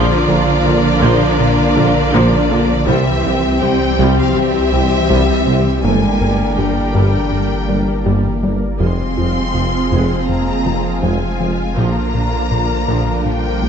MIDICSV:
0, 0, Header, 1, 13, 480
1, 0, Start_track
1, 0, Tempo, 740741
1, 1862, Time_signature, 4, 2, 24, 8
1, 8869, End_track
2, 0, Start_track
2, 0, Title_t, "Violin section"
2, 0, Program_c, 0, 48
2, 0, Note_on_c, 0, 74, 127
2, 1841, Note_off_c, 0, 74, 0
2, 1861, Note_on_c, 0, 76, 119
2, 2332, Note_off_c, 0, 76, 0
2, 2346, Note_on_c, 0, 79, 117
2, 2705, Note_off_c, 0, 79, 0
2, 2714, Note_on_c, 0, 77, 105
2, 2821, Note_on_c, 0, 76, 127
2, 2826, Note_off_c, 0, 77, 0
2, 3774, Note_on_c, 0, 80, 97
2, 3782, Note_off_c, 0, 76, 0
2, 4249, Note_off_c, 0, 80, 0
2, 4266, Note_on_c, 0, 79, 84
2, 5464, Note_off_c, 0, 79, 0
2, 5707, Note_on_c, 0, 84, 101
2, 6639, Note_off_c, 0, 84, 0
2, 6663, Note_on_c, 0, 82, 94
2, 7143, Note_off_c, 0, 82, 0
2, 7145, Note_on_c, 0, 80, 78
2, 7614, Note_off_c, 0, 80, 0
2, 7630, Note_on_c, 0, 82, 102
2, 8586, Note_off_c, 0, 82, 0
2, 8591, Note_on_c, 0, 79, 103
2, 8869, Note_off_c, 0, 79, 0
2, 8869, End_track
3, 0, Start_track
3, 0, Title_t, "Analog synth pad"
3, 0, Program_c, 1, 89
3, 0, Note_on_c, 1, 53, 89
3, 0, Note_on_c, 1, 58, 86
3, 0, Note_on_c, 1, 70, 96
3, 0, Note_on_c, 1, 77, 100
3, 1837, Note_off_c, 1, 77, 0
3, 1860, Note_on_c, 1, 52, 85
3, 1862, Note_on_c, 1, 60, 85
3, 1862, Note_on_c, 1, 67, 88
3, 1863, Note_on_c, 1, 72, 80
3, 1865, Note_off_c, 1, 70, 0
3, 1866, Note_off_c, 1, 58, 0
3, 1867, Note_off_c, 1, 53, 0
3, 3781, Note_on_c, 1, 58, 75
3, 3782, Note_off_c, 1, 60, 0
3, 3782, Note_off_c, 1, 67, 0
3, 3783, Note_off_c, 1, 72, 0
3, 3784, Note_on_c, 1, 70, 78
3, 3785, Note_on_c, 1, 74, 74
3, 5701, Note_off_c, 1, 52, 0
3, 5702, Note_off_c, 1, 58, 0
3, 5703, Note_off_c, 1, 70, 0
3, 5703, Note_on_c, 1, 53, 69
3, 5703, Note_on_c, 1, 77, 70
3, 5704, Note_off_c, 1, 74, 0
3, 5704, Note_on_c, 1, 60, 68
3, 5704, Note_on_c, 1, 68, 69
3, 7623, Note_off_c, 1, 60, 0
3, 7623, Note_off_c, 1, 68, 0
3, 7628, Note_on_c, 1, 62, 69
3, 7630, Note_on_c, 1, 70, 66
3, 8869, Note_off_c, 1, 53, 0
3, 8869, Note_off_c, 1, 62, 0
3, 8869, Note_off_c, 1, 70, 0
3, 8869, Note_off_c, 1, 77, 0
3, 8869, End_track
4, 0, Start_track
4, 0, Title_t, "Violin section"
4, 0, Program_c, 2, 48
4, 0, Note_on_c, 2, 65, 96
4, 0, Note_on_c, 2, 70, 99
4, 1838, Note_off_c, 2, 65, 0
4, 1838, Note_off_c, 2, 70, 0
4, 1860, Note_on_c, 2, 67, 89
4, 1861, Note_on_c, 2, 60, 91
4, 3755, Note_off_c, 2, 67, 0
4, 3756, Note_off_c, 2, 60, 0
4, 3782, Note_on_c, 2, 62, 66
4, 3782, Note_on_c, 2, 70, 68
4, 5547, Note_off_c, 2, 70, 0
4, 5573, Note_off_c, 2, 62, 0
4, 5700, Note_on_c, 2, 68, 60
4, 5702, Note_on_c, 2, 65, 63
4, 7596, Note_off_c, 2, 68, 0
4, 7627, Note_on_c, 2, 70, 63
4, 8869, Note_off_c, 2, 65, 0
4, 8869, Note_off_c, 2, 70, 0
4, 8869, End_track
5, 0, Start_track
5, 0, Title_t, "French horn section"
5, 0, Program_c, 3, 60
5, 0, Note_on_c, 3, 62, 95
5, 0, Note_on_c, 3, 65, 86
5, 1836, Note_off_c, 3, 62, 0
5, 1842, Note_off_c, 3, 65, 0
5, 1868, Note_on_c, 3, 60, 91
5, 1869, Note_on_c, 3, 67, 91
5, 3759, Note_off_c, 3, 60, 0
5, 3760, Note_off_c, 3, 67, 0
5, 3781, Note_on_c, 3, 62, 68
5, 3784, Note_on_c, 3, 58, 62
5, 5470, Note_off_c, 3, 58, 0
5, 5495, Note_off_c, 3, 62, 0
5, 5702, Note_on_c, 3, 56, 63
5, 5706, Note_on_c, 3, 65, 57
5, 7596, Note_off_c, 3, 56, 0
5, 7622, Note_on_c, 3, 58, 62
5, 8869, Note_off_c, 3, 58, 0
5, 8869, Note_off_c, 3, 65, 0
5, 8869, End_track
6, 0, Start_track
6, 0, Title_t, "Synth arpeggio sound"
6, 0, Program_c, 4, 84
6, 0, Note_on_c, 4, 58, 112
6, 88, Note_off_c, 4, 58, 0
6, 187, Note_on_c, 4, 70, 89
6, 330, Note_off_c, 4, 70, 0
6, 427, Note_on_c, 4, 70, 84
6, 570, Note_off_c, 4, 70, 0
6, 665, Note_on_c, 4, 58, 118
6, 809, Note_off_c, 4, 58, 0
6, 1146, Note_on_c, 4, 65, 85
6, 1289, Note_off_c, 4, 65, 0
6, 1388, Note_on_c, 4, 58, 116
6, 1531, Note_off_c, 4, 58, 0
6, 1625, Note_on_c, 4, 65, 81
6, 1768, Note_off_c, 4, 65, 0
6, 1866, Note_on_c, 4, 48, 106
6, 2009, Note_off_c, 4, 48, 0
6, 2107, Note_on_c, 4, 60, 83
6, 2250, Note_off_c, 4, 60, 0
6, 2347, Note_on_c, 4, 60, 72
6, 2490, Note_off_c, 4, 60, 0
6, 2588, Note_on_c, 4, 48, 107
6, 2731, Note_off_c, 4, 48, 0
6, 3066, Note_on_c, 4, 55, 72
6, 3209, Note_off_c, 4, 55, 0
6, 3305, Note_on_c, 4, 48, 106
6, 3449, Note_off_c, 4, 48, 0
6, 3548, Note_on_c, 4, 55, 69
6, 3690, Note_off_c, 4, 55, 0
6, 3787, Note_on_c, 4, 58, 93
6, 3930, Note_off_c, 4, 58, 0
6, 4029, Note_on_c, 4, 70, 73
6, 4171, Note_off_c, 4, 70, 0
6, 4265, Note_on_c, 4, 67, 63
6, 4408, Note_off_c, 4, 67, 0
6, 4503, Note_on_c, 4, 55, 93
6, 4647, Note_off_c, 4, 55, 0
6, 4983, Note_on_c, 4, 62, 62
6, 5127, Note_off_c, 4, 62, 0
6, 5222, Note_on_c, 4, 55, 94
6, 5366, Note_off_c, 4, 55, 0
6, 5464, Note_on_c, 4, 62, 66
6, 5607, Note_off_c, 4, 62, 0
6, 5703, Note_on_c, 4, 53, 88
6, 5847, Note_off_c, 4, 53, 0
6, 5944, Note_on_c, 4, 65, 64
6, 6088, Note_off_c, 4, 65, 0
6, 6185, Note_on_c, 4, 65, 60
6, 6328, Note_off_c, 4, 65, 0
6, 6426, Note_on_c, 4, 53, 91
6, 6569, Note_off_c, 4, 53, 0
6, 6907, Note_on_c, 4, 60, 61
6, 7050, Note_off_c, 4, 60, 0
6, 7146, Note_on_c, 4, 53, 87
6, 7289, Note_off_c, 4, 53, 0
6, 7387, Note_on_c, 4, 60, 57
6, 7530, Note_off_c, 4, 60, 0
6, 7626, Note_on_c, 4, 58, 80
6, 7769, Note_off_c, 4, 58, 0
6, 7866, Note_on_c, 4, 70, 62
6, 8009, Note_off_c, 4, 70, 0
6, 8107, Note_on_c, 4, 70, 60
6, 8250, Note_off_c, 4, 70, 0
6, 8348, Note_on_c, 4, 58, 89
6, 8491, Note_off_c, 4, 58, 0
6, 8830, Note_on_c, 4, 65, 59
6, 8869, Note_off_c, 4, 65, 0
6, 8869, End_track
7, 0, Start_track
7, 0, Title_t, "Cello section"
7, 0, Program_c, 5, 48
7, 0, Note_on_c, 5, 50, 111
7, 1839, Note_off_c, 5, 50, 0
7, 1865, Note_on_c, 5, 52, 99
7, 2342, Note_on_c, 5, 55, 93
7, 2344, Note_off_c, 5, 52, 0
7, 2695, Note_off_c, 5, 55, 0
7, 2702, Note_on_c, 5, 53, 84
7, 2820, Note_off_c, 5, 53, 0
7, 2823, Note_on_c, 5, 52, 88
7, 3764, Note_off_c, 5, 52, 0
7, 3784, Note_on_c, 5, 56, 85
7, 4254, Note_off_c, 5, 56, 0
7, 4267, Note_on_c, 5, 55, 67
7, 5465, Note_off_c, 5, 55, 0
7, 5705, Note_on_c, 5, 60, 81
7, 6638, Note_off_c, 5, 60, 0
7, 6668, Note_on_c, 5, 58, 71
7, 7145, Note_off_c, 5, 58, 0
7, 7151, Note_on_c, 5, 56, 70
7, 7627, Note_off_c, 5, 56, 0
7, 7631, Note_on_c, 5, 58, 77
7, 8568, Note_off_c, 5, 58, 0
7, 8589, Note_on_c, 5, 55, 76
7, 8869, Note_off_c, 5, 55, 0
7, 8869, End_track
8, 0, Start_track
8, 0, Title_t, "Viola section"
8, 0, Program_c, 6, 48
8, 0, Note_on_c, 6, 53, 108
8, 0, Note_on_c, 6, 62, 94
8, 167, Note_off_c, 6, 53, 0
8, 186, Note_on_c, 6, 50, 69
8, 238, Note_off_c, 6, 50, 0
8, 427, Note_on_c, 6, 50, 79
8, 479, Note_off_c, 6, 50, 0
8, 666, Note_on_c, 6, 53, 112
8, 888, Note_off_c, 6, 53, 0
8, 1144, Note_on_c, 6, 50, 84
8, 1195, Note_off_c, 6, 50, 0
8, 1382, Note_on_c, 6, 53, 98
8, 1606, Note_off_c, 6, 53, 0
8, 1625, Note_on_c, 6, 50, 84
8, 1677, Note_off_c, 6, 50, 0
8, 1838, Note_off_c, 6, 62, 0
8, 1863, Note_on_c, 6, 55, 89
8, 1865, Note_on_c, 6, 60, 93
8, 2086, Note_off_c, 6, 55, 0
8, 2104, Note_on_c, 6, 48, 69
8, 2156, Note_off_c, 6, 48, 0
8, 2343, Note_on_c, 6, 52, 62
8, 2395, Note_off_c, 6, 52, 0
8, 2584, Note_on_c, 6, 55, 94
8, 2807, Note_off_c, 6, 55, 0
8, 3065, Note_on_c, 6, 52, 69
8, 3116, Note_off_c, 6, 52, 0
8, 3306, Note_on_c, 6, 55, 84
8, 3528, Note_off_c, 6, 55, 0
8, 3545, Note_on_c, 6, 48, 72
8, 3597, Note_off_c, 6, 48, 0
8, 3758, Note_off_c, 6, 60, 0
8, 3788, Note_on_c, 6, 50, 67
8, 3789, Note_on_c, 6, 58, 66
8, 4009, Note_off_c, 6, 50, 0
8, 4026, Note_on_c, 6, 50, 52
8, 4078, Note_off_c, 6, 50, 0
8, 4268, Note_on_c, 6, 50, 51
8, 4319, Note_off_c, 6, 50, 0
8, 4504, Note_on_c, 6, 55, 68
8, 4726, Note_off_c, 6, 55, 0
8, 4986, Note_on_c, 6, 50, 58
8, 5037, Note_off_c, 6, 50, 0
8, 5220, Note_on_c, 6, 55, 60
8, 5445, Note_off_c, 6, 55, 0
8, 5465, Note_on_c, 6, 50, 48
8, 5517, Note_off_c, 6, 50, 0
8, 5550, Note_off_c, 6, 58, 0
8, 5703, Note_on_c, 6, 60, 56
8, 5704, Note_on_c, 6, 56, 70
8, 5926, Note_off_c, 6, 56, 0
8, 5947, Note_on_c, 6, 48, 44
8, 5999, Note_off_c, 6, 48, 0
8, 6183, Note_on_c, 6, 53, 47
8, 6235, Note_off_c, 6, 53, 0
8, 6426, Note_on_c, 6, 56, 64
8, 6647, Note_off_c, 6, 56, 0
8, 6905, Note_on_c, 6, 53, 50
8, 6957, Note_off_c, 6, 53, 0
8, 7149, Note_on_c, 6, 56, 58
8, 7369, Note_off_c, 6, 56, 0
8, 7388, Note_on_c, 6, 48, 51
8, 7440, Note_off_c, 6, 48, 0
8, 7597, Note_off_c, 6, 60, 0
8, 7626, Note_on_c, 6, 62, 59
8, 7628, Note_on_c, 6, 53, 67
8, 7849, Note_off_c, 6, 53, 0
8, 7871, Note_on_c, 6, 50, 49
8, 7922, Note_off_c, 6, 50, 0
8, 8110, Note_on_c, 6, 50, 49
8, 8162, Note_off_c, 6, 50, 0
8, 8347, Note_on_c, 6, 53, 65
8, 8568, Note_off_c, 6, 53, 0
8, 8827, Note_on_c, 6, 50, 54
8, 8869, Note_off_c, 6, 50, 0
8, 8869, Note_off_c, 6, 62, 0
8, 8869, End_track
9, 0, Start_track
9, 0, Title_t, "Trombone section"
9, 0, Program_c, 7, 61
9, 0, Note_on_c, 7, 53, 101
9, 0, Note_on_c, 7, 58, 103
9, 1838, Note_off_c, 7, 53, 0
9, 1841, Note_off_c, 7, 58, 0
9, 1862, Note_on_c, 7, 48, 93
9, 1865, Note_on_c, 7, 55, 93
9, 3677, Note_off_c, 7, 48, 0
9, 3787, Note_on_c, 7, 50, 74
9, 5472, Note_off_c, 7, 50, 0
9, 5707, Note_on_c, 7, 48, 63
9, 6158, Note_off_c, 7, 55, 0
9, 6185, Note_on_c, 7, 53, 67
9, 7599, Note_off_c, 7, 48, 0
9, 7620, Note_on_c, 7, 50, 66
9, 8869, Note_off_c, 7, 50, 0
9, 8869, Note_off_c, 7, 53, 0
9, 8869, End_track
10, 0, Start_track
10, 0, Title_t, "Analog synth bass"
10, 0, Program_c, 8, 38
10, 0, Note_on_c, 8, 46, 111
10, 90, Note_off_c, 8, 46, 0
10, 189, Note_on_c, 8, 46, 89
10, 331, Note_off_c, 8, 46, 0
10, 428, Note_on_c, 8, 46, 82
10, 570, Note_off_c, 8, 46, 0
10, 664, Note_on_c, 8, 46, 109
10, 808, Note_off_c, 8, 46, 0
10, 906, Note_on_c, 8, 46, 83
10, 1049, Note_off_c, 8, 46, 0
10, 1149, Note_on_c, 8, 58, 82
10, 1291, Note_off_c, 8, 58, 0
10, 1388, Note_on_c, 8, 46, 113
10, 1531, Note_off_c, 8, 46, 0
10, 1628, Note_on_c, 8, 58, 76
10, 1770, Note_off_c, 8, 58, 0
10, 1866, Note_on_c, 8, 36, 113
10, 2009, Note_off_c, 8, 36, 0
10, 2105, Note_on_c, 8, 36, 83
10, 2248, Note_off_c, 8, 36, 0
10, 2346, Note_on_c, 8, 36, 74
10, 2489, Note_off_c, 8, 36, 0
10, 2587, Note_on_c, 8, 36, 105
10, 2730, Note_off_c, 8, 36, 0
10, 2829, Note_on_c, 8, 36, 70
10, 2971, Note_off_c, 8, 36, 0
10, 3067, Note_on_c, 8, 48, 70
10, 3209, Note_off_c, 8, 48, 0
10, 3305, Note_on_c, 8, 36, 99
10, 3449, Note_off_c, 8, 36, 0
10, 3545, Note_on_c, 8, 48, 73
10, 3688, Note_off_c, 8, 48, 0
10, 3787, Note_on_c, 8, 43, 95
10, 3929, Note_off_c, 8, 43, 0
10, 4025, Note_on_c, 8, 43, 68
10, 4168, Note_off_c, 8, 43, 0
10, 4266, Note_on_c, 8, 43, 67
10, 4409, Note_off_c, 8, 43, 0
10, 4501, Note_on_c, 8, 43, 92
10, 4646, Note_off_c, 8, 43, 0
10, 4744, Note_on_c, 8, 43, 61
10, 4888, Note_off_c, 8, 43, 0
10, 4984, Note_on_c, 8, 55, 66
10, 5128, Note_off_c, 8, 55, 0
10, 5224, Note_on_c, 8, 43, 91
10, 5368, Note_off_c, 8, 43, 0
10, 5466, Note_on_c, 8, 55, 65
10, 5609, Note_off_c, 8, 55, 0
10, 5705, Note_on_c, 8, 41, 87
10, 5848, Note_off_c, 8, 41, 0
10, 5949, Note_on_c, 8, 41, 65
10, 6091, Note_off_c, 8, 41, 0
10, 6189, Note_on_c, 8, 41, 60
10, 6331, Note_off_c, 8, 41, 0
10, 6427, Note_on_c, 8, 41, 84
10, 6570, Note_off_c, 8, 41, 0
10, 6668, Note_on_c, 8, 41, 64
10, 6810, Note_off_c, 8, 41, 0
10, 6909, Note_on_c, 8, 53, 62
10, 7051, Note_off_c, 8, 53, 0
10, 7146, Note_on_c, 8, 41, 85
10, 7289, Note_off_c, 8, 41, 0
10, 7389, Note_on_c, 8, 53, 58
10, 7531, Note_off_c, 8, 53, 0
10, 7632, Note_on_c, 8, 46, 85
10, 7773, Note_off_c, 8, 46, 0
10, 7868, Note_on_c, 8, 46, 63
10, 8011, Note_off_c, 8, 46, 0
10, 8109, Note_on_c, 8, 46, 64
10, 8251, Note_off_c, 8, 46, 0
10, 8348, Note_on_c, 8, 46, 86
10, 8490, Note_off_c, 8, 46, 0
10, 8589, Note_on_c, 8, 46, 60
10, 8731, Note_off_c, 8, 46, 0
10, 8830, Note_on_c, 8, 58, 61
10, 8869, Note_off_c, 8, 58, 0
10, 8869, End_track
11, 0, Start_track
11, 0, Title_t, "Double bass section"
11, 0, Program_c, 10, 48
11, 180, Note_on_c, 10, 34, 84
11, 232, Note_off_c, 10, 34, 0
11, 421, Note_on_c, 10, 34, 76
11, 473, Note_off_c, 10, 34, 0
11, 663, Note_on_c, 10, 34, 116
11, 715, Note_off_c, 10, 34, 0
11, 1147, Note_on_c, 10, 34, 82
11, 1199, Note_off_c, 10, 34, 0
11, 1384, Note_on_c, 10, 34, 106
11, 1436, Note_off_c, 10, 34, 0
11, 1624, Note_on_c, 10, 34, 72
11, 1676, Note_off_c, 10, 34, 0
11, 1864, Note_on_c, 10, 36, 104
11, 1916, Note_off_c, 10, 36, 0
11, 2102, Note_on_c, 10, 36, 73
11, 2154, Note_off_c, 10, 36, 0
11, 2344, Note_on_c, 10, 36, 71
11, 2395, Note_off_c, 10, 36, 0
11, 2580, Note_on_c, 10, 36, 100
11, 2632, Note_off_c, 10, 36, 0
11, 3063, Note_on_c, 10, 36, 62
11, 3115, Note_off_c, 10, 36, 0
11, 3305, Note_on_c, 10, 36, 84
11, 3357, Note_off_c, 10, 36, 0
11, 3546, Note_on_c, 10, 36, 55
11, 3598, Note_off_c, 10, 36, 0
11, 3787, Note_on_c, 10, 31, 78
11, 3838, Note_off_c, 10, 31, 0
11, 4024, Note_on_c, 10, 31, 57
11, 4076, Note_off_c, 10, 31, 0
11, 4264, Note_on_c, 10, 31, 52
11, 4315, Note_off_c, 10, 31, 0
11, 4502, Note_on_c, 10, 31, 75
11, 4554, Note_off_c, 10, 31, 0
11, 4982, Note_on_c, 10, 31, 52
11, 5034, Note_off_c, 10, 31, 0
11, 5221, Note_on_c, 10, 31, 70
11, 5273, Note_off_c, 10, 31, 0
11, 5466, Note_on_c, 10, 31, 49
11, 5518, Note_off_c, 10, 31, 0
11, 5705, Note_on_c, 10, 29, 75
11, 5757, Note_off_c, 10, 29, 0
11, 5945, Note_on_c, 10, 29, 49
11, 5997, Note_off_c, 10, 29, 0
11, 6184, Note_on_c, 10, 29, 48
11, 6236, Note_off_c, 10, 29, 0
11, 6424, Note_on_c, 10, 29, 67
11, 6476, Note_off_c, 10, 29, 0
11, 6907, Note_on_c, 10, 29, 50
11, 6959, Note_off_c, 10, 29, 0
11, 7147, Note_on_c, 10, 29, 66
11, 7199, Note_off_c, 10, 29, 0
11, 7386, Note_on_c, 10, 29, 46
11, 7438, Note_off_c, 10, 29, 0
11, 7623, Note_on_c, 10, 34, 73
11, 7675, Note_off_c, 10, 34, 0
11, 7867, Note_on_c, 10, 34, 55
11, 7919, Note_off_c, 10, 34, 0
11, 8107, Note_on_c, 10, 34, 48
11, 8159, Note_off_c, 10, 34, 0
11, 8347, Note_on_c, 10, 34, 76
11, 8399, Note_off_c, 10, 34, 0
11, 8827, Note_on_c, 10, 34, 57
11, 8869, Note_off_c, 10, 34, 0
11, 8869, End_track
12, 0, Start_track
12, 0, Title_t, "Sub bass"
12, 0, Program_c, 11, 38
12, 0, Note_on_c, 11, 34, 85
12, 1863, Note_on_c, 11, 36, 88
12, 1873, Note_off_c, 11, 34, 0
12, 3784, Note_on_c, 11, 31, 77
12, 3793, Note_off_c, 11, 36, 0
12, 5702, Note_on_c, 11, 29, 65
12, 5712, Note_off_c, 11, 31, 0
12, 7628, Note_on_c, 11, 34, 64
12, 7638, Note_off_c, 11, 29, 0
12, 8869, Note_off_c, 11, 34, 0
12, 8869, End_track
13, 0, Start_track
13, 0, Title_t, "Tuba"
13, 0, Program_c, 12, 58
13, 182, Note_on_c, 12, 34, 79
13, 278, Note_off_c, 12, 34, 0
13, 424, Note_on_c, 12, 34, 79
13, 520, Note_off_c, 12, 34, 0
13, 659, Note_on_c, 12, 34, 110
13, 756, Note_off_c, 12, 34, 0
13, 1142, Note_on_c, 12, 34, 86
13, 1238, Note_off_c, 12, 34, 0
13, 1382, Note_on_c, 12, 34, 110
13, 1478, Note_off_c, 12, 34, 0
13, 1625, Note_on_c, 12, 34, 76
13, 1720, Note_off_c, 12, 34, 0
13, 1863, Note_on_c, 12, 36, 104
13, 1959, Note_off_c, 12, 36, 0
13, 2102, Note_on_c, 12, 36, 71
13, 2198, Note_off_c, 12, 36, 0
13, 2342, Note_on_c, 12, 36, 71
13, 2438, Note_off_c, 12, 36, 0
13, 2581, Note_on_c, 12, 36, 92
13, 2678, Note_off_c, 12, 36, 0
13, 3062, Note_on_c, 12, 36, 64
13, 3158, Note_off_c, 12, 36, 0
13, 3303, Note_on_c, 12, 36, 83
13, 3399, Note_off_c, 12, 36, 0
13, 3541, Note_on_c, 12, 36, 57
13, 3638, Note_off_c, 12, 36, 0
13, 3783, Note_on_c, 12, 31, 77
13, 3879, Note_off_c, 12, 31, 0
13, 4024, Note_on_c, 12, 31, 54
13, 4120, Note_off_c, 12, 31, 0
13, 4264, Note_on_c, 12, 31, 50
13, 4359, Note_off_c, 12, 31, 0
13, 4502, Note_on_c, 12, 31, 70
13, 4598, Note_off_c, 12, 31, 0
13, 4984, Note_on_c, 12, 31, 48
13, 5079, Note_off_c, 12, 31, 0
13, 5224, Note_on_c, 12, 31, 66
13, 5320, Note_off_c, 12, 31, 0
13, 5468, Note_on_c, 12, 31, 47
13, 5563, Note_off_c, 12, 31, 0
13, 5704, Note_on_c, 12, 29, 72
13, 5800, Note_off_c, 12, 29, 0
13, 5945, Note_on_c, 12, 29, 49
13, 6040, Note_off_c, 12, 29, 0
13, 6185, Note_on_c, 12, 29, 48
13, 6280, Note_off_c, 12, 29, 0
13, 6429, Note_on_c, 12, 29, 72
13, 6524, Note_off_c, 12, 29, 0
13, 6910, Note_on_c, 12, 29, 51
13, 7005, Note_off_c, 12, 29, 0
13, 7146, Note_on_c, 12, 29, 67
13, 7241, Note_off_c, 12, 29, 0
13, 7388, Note_on_c, 12, 29, 51
13, 7483, Note_off_c, 12, 29, 0
13, 7630, Note_on_c, 12, 34, 74
13, 7724, Note_off_c, 12, 34, 0
13, 7869, Note_on_c, 12, 34, 48
13, 7963, Note_off_c, 12, 34, 0
13, 8107, Note_on_c, 12, 34, 49
13, 8202, Note_off_c, 12, 34, 0
13, 8348, Note_on_c, 12, 34, 72
13, 8443, Note_off_c, 12, 34, 0
13, 8828, Note_on_c, 12, 34, 53
13, 8869, Note_off_c, 12, 34, 0
13, 8869, End_track
0, 0, End_of_file